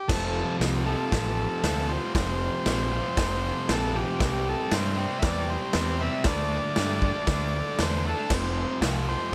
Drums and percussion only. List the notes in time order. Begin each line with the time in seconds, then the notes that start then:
0.09 kick, snare, crash
0.61 snare, open hi-hat
1.12 kick, snare, open hi-hat
1.64 snare, open hi-hat
2.15 kick, snare, open hi-hat
2.66 snare, open hi-hat
3.17 kick, snare, open hi-hat
3.69 snare, open hi-hat
4.20 kick, snare, open hi-hat
4.72 snare, open hi-hat
5.23 kick, snare, open hi-hat
5.73 snare, open hi-hat
6.24 kick, snare, open hi-hat
6.76 snare, open hi-hat
7.02 kick
7.27 kick, snare, open hi-hat
7.79 snare, open hi-hat
8.30 kick, snare, crash
8.82 snare, open hi-hat